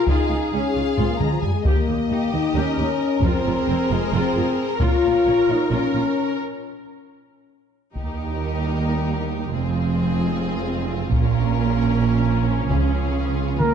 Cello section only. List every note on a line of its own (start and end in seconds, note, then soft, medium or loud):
0.08 0.16 C#2 medium
0.30 0.38 C#2 soft
0.53 0.61 C#2 soft
0.76 0.84 C#2 soft
0.99 1.07 C#2 medium
1.20 1.28 C#2 soft
1.66 1.74 D#2 medium
1.88 1.96 D#2 soft
2.10 2.18 D#2 soft
2.33 2.41 D#2 soft
2.56 2.64 D#2 medium
2.79 2.87 D#2 soft
3.24 3.32 F2 medium
3.47 3.55 F2 soft
3.69 3.77 F2 soft
3.91 3.99 F2 medium
4.14 4.22 F2 medium
4.37 4.45 F2 medium
4.82 4.90 A#2 medium
5.05 5.13 A#2 soft
5.27 5.35 A#2 soft
5.49 5.57 A#2 soft
5.71 5.79 A#2 medium
5.93 6.01 A#2 soft
7.96 9.50 D#2 soft
9.54 11.09 F2 medium
11.13 12.67 A#2 medium
12.70 13.59 C#3 soft
13.61 13.74 A#3 medium